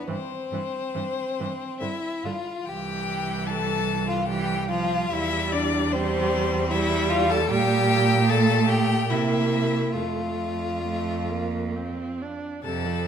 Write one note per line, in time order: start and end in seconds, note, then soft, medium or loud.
0.08 0.16 G2 medium
0.08 0.16 E3 medium
0.08 1.84 C4 medium
0.08 1.78 C5 loud
0.51 0.59 G2 medium
0.51 0.61 E3 medium
0.95 1.03 G2 medium
0.95 1.03 E3 medium
1.40 1.48 G2 medium
1.40 1.48 E3 medium
1.80 1.89 G2 medium
1.80 1.89 D3 medium
1.80 2.27 E4 medium
1.80 2.25 E5 medium
2.23 2.32 G2 medium
2.23 2.33 D3 medium
2.23 2.70 F4 medium
2.23 2.67 F5 medium
2.65 5.08 C2 medium
2.65 4.25 E3 medium
2.65 3.51 G4 medium
2.65 3.48 G5 loud
3.47 4.08 A4 medium
3.47 4.09 A5 loud
4.08 4.28 F4 medium
4.08 4.27 F5 medium
4.26 4.69 E3 medium
4.26 4.69 G4 medium
4.26 4.67 G5 loud
4.68 5.11 F3 medium
4.68 5.11 F5 loud
4.72 5.14 F4 medium
5.10 7.46 E2 medium
5.10 5.91 G3 medium
5.10 5.54 E4 loud
5.10 5.53 E5 loud
5.52 5.95 D4 medium
5.52 5.94 D5 loud
5.92 6.70 G3 medium
5.92 6.72 C4 loud
5.92 6.72 C5 loud
6.71 7.49 G3 loud
6.71 7.11 E4 loud
6.71 7.12 E5 loud
7.10 7.31 F4 loud
7.10 7.32 F5 loud
7.30 7.51 A4 loud
7.30 7.49 A5 loud
7.49 9.11 A#2 loud
7.49 8.28 G3 medium
7.49 8.32 G4 loud
7.49 8.31 G5 loud
8.29 9.07 A3 medium
8.29 8.68 A4 loud
8.29 8.71 A5 loud
8.68 9.12 G4 loud
8.68 9.11 G5 loud
9.09 9.94 C3 medium
9.09 9.95 A#3 medium
9.09 9.94 E4 medium
9.09 9.94 E5 loud
9.92 12.42 F2 medium
9.92 10.75 A3 medium
9.92 12.19 F4 medium
9.92 12.16 F5 medium
10.83 11.31 A3 medium
11.30 11.77 A#3 medium
11.75 12.23 C4 medium
12.22 12.64 D4 medium
12.63 13.07 F2 medium
12.63 12.87 C3 medium
12.63 13.07 A4 medium
12.63 13.07 A5 loud
12.85 13.07 F3 medium